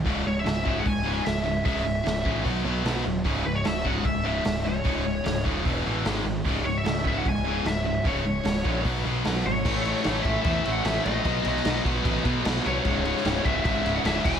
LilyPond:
<<
  \new Staff \with { instrumentName = "Lead electric guitar" } { \time 4/4 \key cis \minor \tempo 4 = 150 r8 cis''16 e''8. e''16 fis''16 gis''4 e''4 | e''2 r2 | r8 b'16 cis''16 e''8 fis''8 e''8 e''4 cis''8~ | cis''4. r2 r8 |
r8 cis''16 e''8. e''16 fis''16 gis''4 e''4 | cis''2 r4. cis''8~ | cis''4. e''8 e''8. fis''16 e''8 dis''8~ | dis''4. r2 cis''8~ |
cis''4. e''8 e''8. fis''16 e''8 gis''8 | }
  \new Staff \with { instrumentName = "Distorted electric guitar" } { \clef bass \time 4/4 \key cis \minor <cis, gis, cis>8 <cis, gis,>8 <cis, gis,>8 <cis, gis, cis>8 <cis, gis,>8 <cis, gis, cis>8 <cis, gis,>8 <cis, gis,>8 | <cis, gis, cis>8 <cis, gis,>8 <cis, gis,>8 <cis, gis, cis>8 <b, fis b>8 <b, fis b>8 <b, fis b>8 <b, fis>8 | <cis, gis, cis>8 <cis, gis,>8 <cis, gis,>8 <cis, gis, cis>8 <cis, gis,>8 <cis, gis, cis>8 <cis, gis,>8 <cis, gis,>8 | <cis, gis, cis>8 <cis, gis,>8 <cis, gis,>8 <cis, gis, cis>8 <e, b, e>8 <e, b, e>8 <gis, dis gis>8 <gis, dis>8 |
<cis, gis, cis>8 <cis, gis,>8 <cis, gis,>8 <cis, gis, cis>8 <cis, gis,>8 <cis, gis, cis>8 <cis, gis,>8 <cis, gis,>8 | <cis, gis, cis>8 <cis, gis,>8 <cis, gis,>8 <cis, gis, cis>8 <b, fis b>8 <b, fis b>8 <b, fis b>8 <b, fis>8 | <a, e a>8 <a, e a>8 <a, e a>8 <a, e a>8 <a, e a>8 <a, e a>8 <a, e a>8 <a, e a>8 | <b, fis b>8 <b, fis b>8 <b, fis b>8 <b, fis b>8 <b, fis b>8 <b, fis b>8 <b, fis b>8 <b, fis b>8 |
<cis, gis, cis>8 <cis, gis, cis>8 <cis, gis, cis>8 <cis, gis, cis>8 <cis, gis, cis>8 <cis, gis, cis>8 <cis, gis, cis>8 <e, b, e>8 | }
  \new Staff \with { instrumentName = "Distorted electric guitar" } { \clef bass \time 4/4 \key cis \minor <cis, gis, cis>8 <cis, gis,>8 <cis, gis,>8 <cis, gis, cis>8 <cis, gis,>8 <cis, gis, cis>8 <cis, gis,>8 <cis, gis,>8 | <cis, gis, cis>8 <cis, gis,>8 <cis, gis,>8 <cis, gis, cis>8 <b, fis b>8 <b, fis b>8 <b, fis b>8 <b, fis>8 | <cis, gis, cis>8 <cis, gis,>8 <cis, gis,>8 <cis, gis, cis>8 <cis, gis,>8 <cis, gis, cis>8 <cis, gis,>8 <cis, gis,>8 | <cis, gis, cis>8 <cis, gis,>8 <cis, gis,>8 <cis, gis, cis>8 <e, b, e>8 <e, b, e>8 <gis, dis gis>8 <gis, dis>8 |
<cis, gis, cis>8 <cis, gis,>8 <cis, gis,>8 <cis, gis, cis>8 <cis, gis,>8 <cis, gis, cis>8 <cis, gis,>8 <cis, gis,>8 | <cis, gis, cis>8 <cis, gis,>8 <cis, gis,>8 <cis, gis, cis>8 <b, fis b>8 <b, fis b>8 <b, fis b>8 <b, fis>8 | <a, e a>8 <a, e a>8 <a, e a>8 <a, e a>8 <a, e a>8 <a, e a>8 <a, e a>8 <a, e a>8 | <b, fis b>8 <b, fis b>8 <b, fis b>8 <b, fis b>8 <b, fis b>8 <b, fis b>8 <b, fis b>8 <b, fis b>8 |
<cis, gis, cis>8 <cis, gis, cis>8 <cis, gis, cis>8 <cis, gis, cis>8 <cis, gis, cis>8 <cis, gis, cis>8 <cis, gis, cis>8 <e, b, e>8 | }
  \new Staff \with { instrumentName = "Picked electric bass" } { \clef bass \time 4/4 \key cis \minor cis,,8 cis,,8 cis,,4 cis,,4 cis,,4 | cis,,4 cis,,8 a,,8 b,,8 b,,8 b,,8 dis,,8 | cis,,8 cis,,8 cis,,4 cis,,4 cis,,4 | cis,,4 cis,,8 dis,,8 e,,8 a,,8 gis,,8 gis,,8 |
cis,,8 cis,,8 cis,,4 cis,,4 cis,,4 | cis,,4 cis,,8 ais,,8 b,,8 b,,8 b,,8 gis,,8 | a,,4 a,,8 a,,8 e,8 a,,8 a,,8 ais,,8 | b,,8 b,,8 b,,8 b,,8 a,,8 b,8 b,,8 bis,,8 |
cis,,4 cis,,8 cis,,8 gis,,8 cis,,8 cis,,8 e,,8 | }
  \new DrumStaff \with { instrumentName = "Drums" } \drummode { \time 4/4 <hho bd>4 <hho sn>8 bd8 <hho bd>4 <hho sn>4 | <hho bd>4 <hho sn>8 bd8 <hho bd>4 <hho sn>4 | <hho bd>4 <hho sn>8 bd8 <hho bd>4 <hho sn>4 | <hho bd>4 <hho sn>8 bd8 <hho bd>4 <hho sn>4 |
<hho bd>4 <hho sn>8 bd8 <hho bd>4 <hho sn>4 | <hho bd>4 <hho sn>8 bd8 <hho bd>4 <hho sn>4 | <cymc bd>8 cymc16 sn16 <cymc sn>8 <cymc bd>8 <cymc bd>8 cymc8 <cymc sn>8 cymc8 | <cymc bd>8 cymc16 sn16 <cymc sn>8 <cymc bd>8 <cymc bd>8 <cymc bd>8 <cymc sn>8 cymc8 |
<cymc bd>8 cymc16 sn16 <cymc sn>8 <cymc bd>8 <cymc bd>8 cymc8 <cymc sn>8 <cymc bd>8 | }
>>